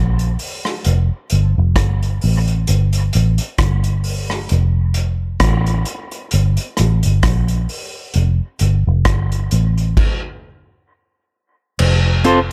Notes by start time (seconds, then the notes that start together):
Already playing: A#1
0.19 closed hi-hat
0.39 open hi-hat
0.65 cross-stick
0.85 F1, closed hi-hat
1.30 G1, closed hi-hat
1.58 F1
1.76 G1, kick, cross-stick, closed hi-hat
2.03 closed hi-hat
2.21 A1, open hi-hat
2.47 closed hi-hat
2.67 G1, closed hi-hat
2.93 closed hi-hat
3.13 A1, closed hi-hat
3.38 closed hi-hat
3.58 G1, kick, cross-stick, closed hi-hat
3.84 closed hi-hat
4.04 open hi-hat
4.30 cross-stick
4.49 F1, closed hi-hat
4.94 closed hi-hat
5.40 A1, kick, cross-stick, closed hi-hat
5.66 closed hi-hat
5.85 closed hi-hat
6.11 closed hi-hat
6.31 G1, closed hi-hat
6.57 closed hi-hat
6.77 A1, cross-stick, closed hi-hat
7.03 G1, closed hi-hat
7.23 A#1, kick, cross-stick, closed hi-hat
7.48 closed hi-hat
7.69 open hi-hat
8.14 F1, closed hi-hat
8.59 G1, closed hi-hat
8.87 F1
9.05 G1, kick, cross-stick, closed hi-hat
9.32 closed hi-hat
9.51 A1, closed hi-hat
9.78 closed hi-hat
9.97 kick, crash
11.79 F1, crash
12.24 C4 F4 A4 C5, closed hi-hat